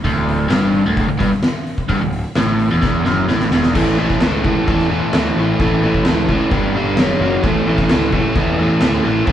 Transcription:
0.04 picked electric bass D1, overdriven electric guitar D2, kick, open hi-hat
0.29 open hi-hat
0.50 picked electric bass G1, overdriven electric guitar G2, snare, open hi-hat
0.74 open hi-hat
0.85 picked electric bass D1, overdriven electric guitar D2
0.97 kick, open hi-hat
1.08 picked electric bass D1, overdriven electric guitar D2
1.19 picked electric bass G1, overdriven electric guitar G2, kick, open hi-hat
1.32 snare
1.43 snare, open hi-hat
1.67 open hi-hat
1.78 kick
1.89 picked electric bass G1, overdriven electric guitar G2, kick, open hi-hat
2.01 picked electric bass D1, overdriven electric guitar D2
2.12 open hi-hat
2.35 picked electric bass A1, overdriven electric guitar A2, snare, open hi-hat
2.60 open hi-hat
2.71 picked electric bass E1, overdriven electric guitar E2
2.81 picked electric bass E1, overdriven electric guitar E2, kick, snare
3.05 picked electric bass F#1, overdriven electric guitar F#2, snare
3.28 picked electric bass A1, overdriven electric guitar A2, snare
3.40 snare
3.51 picked electric bass E1, overdriven electric guitar E2, snare
3.63 snare
3.75 picked electric bass A1, overdriven electric guitar A2 E3 A3, kick, crash
3.98 overdriven electric guitar A2 E3 A3
4.09 kick, snare
4.20 picked electric bass C#2, overdriven electric guitar A2 E3 A3, snare, crash
4.44 overdriven electric guitar A2 E3 A3, kick
4.67 picked electric bass E2, overdriven electric guitar A2 E3 A3, kick, crash
4.79 snare
4.90 overdriven electric guitar A2 E3 A3
5.13 picked electric bass D2, overdriven electric guitar A2 E3 A3, snare, crash
5.37 picked electric bass A1, overdriven electric guitar A2 E3 A3
5.59 picked electric bass A1, overdriven electric guitar A2 E3 A3, kick, crash
5.82 overdriven electric guitar A2 E3 A3
5.94 kick
6.05 picked electric bass C#2, overdriven electric guitar A2 E3 A3, snare, crash
6.29 overdriven electric guitar A2 E3 A3, kick
6.51 picked electric bass G1, overdriven electric guitar G2 D3 G3, kick, crash
6.75 overdriven electric guitar G2 D3 G3
6.97 picked electric bass F#1, overdriven electric guitar F#2 C#3 F#3, snare, crash
7.19 picked electric bass F#1, overdriven electric guitar F#2 C#3 F#3
7.43 picked electric bass A1, overdriven electric guitar A2 E3 A3, kick, crash
7.67 overdriven electric guitar A2 E3 A3
7.78 kick, snare
7.88 picked electric bass C#2, overdriven electric guitar A2 E3 A3, snare, crash
8.12 overdriven electric guitar A2 E3 A3, kick
8.36 picked electric bass E2, overdriven electric guitar A2 E3 A3, kick, crash
8.59 overdriven electric guitar A2 E3 A3
8.81 picked electric bass D2, overdriven electric guitar A2 E3 A3, snare, crash
9.04 picked electric bass A1, overdriven electric guitar A2 E3 A3
9.26 picked electric bass A1, overdriven electric guitar A2 E3 A3, kick, crash

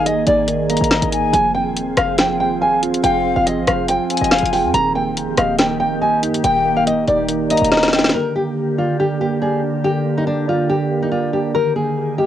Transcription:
Already playing: 808-style bass G#1, tine electric piano D#3 A#3 D#4 D#5, ambient pad D#3 A#3 G#4
0.06 nylon-string guitar D#5, closed hi-hat
0.27 808-style bass G#1, tine electric piano D#4, nylon-string guitar D5, closed hi-hat
0.48 tine electric piano D#3, closed hi-hat
0.69 tine electric piano A#3, nylon-string guitar D#5, flute A#5, closed hi-hat
0.77 closed hi-hat
0.81 808-style bass G#1, closed hi-hat
0.91 nylon-string guitar D#5, tine electric piano D#5, snare
1.02 808-style bass G#1, closed hi-hat
1.12 tine electric piano D#4, flute G#5, closed hi-hat
1.23 808-style bass G1
1.33 808-style bass F1, ambient pad F3 C4, tine electric piano F3, nylon-string guitar G#5, closed hi-hat
1.55 tine electric piano C4, nylon-string guitar G5
1.66 808-style bass D#1
1.77 closed hi-hat
1.97 808-style bass F1, tine electric piano F5, nylon-string guitar F5, cross-stick, closed hi-hat
2.18 tine electric piano F3, nylon-string guitar G5, snare, closed hi-hat
2.40 tine electric piano C4, nylon-string guitar G5
2.61 tine electric piano F5, nylon-string guitar G#5
2.82 808-style bass G1, tine electric piano F4, closed hi-hat
2.94 808-style bass F1, closed hi-hat
3.03 808-style bass F1, tine electric piano F3, flute F5, nylon-string guitar G5, closed hi-hat
3.25 tine electric piano C4
3.36 808-style bass F1, nylon-string guitar F5
3.46 nylon-string guitar D#5, closed hi-hat
3.57 808-style bass G#1
3.67 808-style bass F1, tine electric piano F5, nylon-string guitar F5, cross-stick, closed hi-hat
3.88 tine electric piano F3, nylon-string guitar G5, closed hi-hat
4.10 tine electric piano C4, flute G#5, closed hi-hat
4.17 nylon-string guitar D#5, closed hi-hat
4.21 808-style bass F1, closed hi-hat
4.31 nylon-string guitar F5, tine electric piano F5, snare, closed hi-hat
4.38 closed hi-hat
4.43 808-style bass F1, closed hi-hat
4.53 tine electric piano F4, nylon-string guitar G5, open hi-hat
4.64 808-style bass F2
4.74 808-style bass D#1, ambient pad D#3 A#3 G4, tine electric piano D#3, nylon-string guitar A#5, closed hi-hat
4.95 tine electric piano A#3, nylon-string guitar G5
5.16 808-style bass F1, closed hi-hat
5.28 808-style bass D#1
5.37 808-style bass D#1, tine electric piano D#5, nylon-string guitar F5, cross-stick, closed hi-hat
5.58 tine electric piano D#3, nylon-string guitar G5, snare, closed hi-hat
5.80 tine electric piano A#3, nylon-string guitar G5
6.01 tine electric piano D#5, nylon-string guitar G#5
6.23 808-style bass G2, tine electric piano D#4, closed hi-hat
6.34 closed hi-hat
6.44 808-style bass D#1, tine electric piano D#3, flute G5, nylon-string guitar G5, closed hi-hat
6.65 tine electric piano A#3
6.76 nylon-string guitar F5
6.87 nylon-string guitar D#5, closed hi-hat
7.08 808-style bass D#1, tine electric piano D#4, nylon-string guitar D5, closed hi-hat
7.29 tine electric piano D#3, closed hi-hat
7.50 tine electric piano A#3, nylon-string guitar D#5, flute A#5, closed hi-hat
7.58 closed hi-hat
7.62 808-style bass D#1, closed hi-hat
7.72 nylon-string guitar D#5, tine electric piano D#5, snare
7.77 snare
7.83 snare, closed hi-hat
7.88 snare
7.93 tine electric piano D#4, flute G5, snare, closed hi-hat
7.99 snare
8.04 snare
8.09 snare
8.14 tine electric piano D3, ambient pad D3 A#3 G4, nylon-string guitar A#4
8.36 tine electric piano A#3, nylon-string guitar G4
8.78 nylon-string guitar F4, tine electric piano D5
8.99 tine electric piano D3, nylon-string guitar G4
9.21 tine electric piano A#3, nylon-string guitar G4
9.42 nylon-string guitar G#4, tine electric piano D5
9.63 tine electric piano D4
9.84 tine electric piano D3, nylon-string guitar G4
10.06 tine electric piano A#3
10.17 nylon-string guitar D#4
10.27 nylon-string guitar D4
10.48 nylon-string guitar F4, tine electric piano D5
10.69 tine electric piano D3, nylon-string guitar G4
10.91 tine electric piano A#3
11.02 nylon-string guitar D#4
11.12 nylon-string guitar F4, tine electric piano D5
11.33 tine electric piano D4, nylon-string guitar G4
11.54 tine electric piano D#3, ambient pad D#3 A#3 G#4, nylon-string guitar A#4
11.76 tine electric piano A#3, nylon-string guitar G#4
12.18 nylon-string guitar G4, tine electric piano D#5

